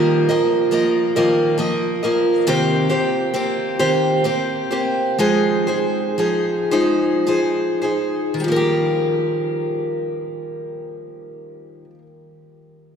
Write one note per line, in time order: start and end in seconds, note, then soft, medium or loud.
0.00 0.27 D#3 medium
0.00 0.28 F3 medium
0.00 0.28 G3 medium
0.00 0.28 A#3 medium
0.00 0.28 A#4 medium
0.00 0.28 D#5 medium
0.29 0.70 F3 soft
0.29 0.71 A#3 soft
0.29 0.71 A#4 soft
0.29 0.72 D#5 medium
0.71 1.15 F3 soft
0.71 1.15 A#3 medium
0.71 1.15 A#4 medium
0.71 1.15 D#5 medium
1.16 1.60 D#3 medium
1.16 1.56 F3 medium
1.16 1.60 G3 medium
1.16 1.57 A#3 medium
1.16 1.58 A#4 medium
1.16 1.58 D#5 medium
1.58 2.02 F3 medium
1.58 2.02 A#3 medium
1.58 2.02 A#4 medium
1.58 2.01 D#5 medium
2.03 2.47 F3 soft
2.03 2.46 A#3 soft
2.03 2.47 A#4 medium
2.03 2.46 D#5 soft
2.47 2.90 C3 medium
2.47 2.91 D#3 medium
2.47 2.90 A#3 medium
2.47 2.90 C4 medium
2.47 2.89 G4 medium
2.47 2.88 C5 medium
2.89 3.33 A#3 soft
2.89 3.32 C4 soft
2.89 3.33 G4 soft
2.89 3.34 C5 medium
3.34 3.79 A#3 medium
3.34 3.79 C4 medium
3.34 3.78 G4 medium
3.34 3.78 C5 medium
3.79 4.26 C3 soft
3.79 4.26 D#3 medium
3.79 4.24 A#3 medium
3.79 4.23 C4 medium
3.79 4.24 G4 medium
3.79 4.25 C5 medium
4.24 4.70 A#3 soft
4.24 4.71 C4 medium
4.24 4.71 G4 medium
4.24 4.69 C5 medium
4.71 5.19 A#3 soft
4.71 5.19 C4 soft
4.71 5.20 G4 soft
4.71 5.18 C5 soft
5.19 5.68 F3 medium
5.19 5.68 G#3 medium
5.19 5.68 D#4 medium
5.19 5.67 G#4 medium
5.19 5.66 C5 medium
5.67 6.18 D#4 soft
5.67 6.18 G#4 soft
5.67 6.18 C5 soft
6.18 6.71 F3 soft
6.18 6.71 D#4 medium
6.18 6.71 G#4 medium
6.18 6.70 C5 medium
6.71 7.25 F3 soft
6.71 7.26 G#3 soft
6.71 7.26 D#4 medium
6.71 7.26 G#4 medium
6.71 7.25 C5 medium
7.27 7.83 F3 soft
7.27 7.83 D#4 medium
7.27 7.82 G#4 medium
7.27 7.80 C5 medium
7.82 8.42 D#4 soft
7.82 8.42 G#4 soft
7.82 8.41 C5 soft
8.34 11.84 D#3 medium
8.40 11.90 G3 medium
8.44 11.94 F3 medium
8.48 11.98 A#3 medium
8.48 12.02 A#4 medium
8.56 12.06 G4 medium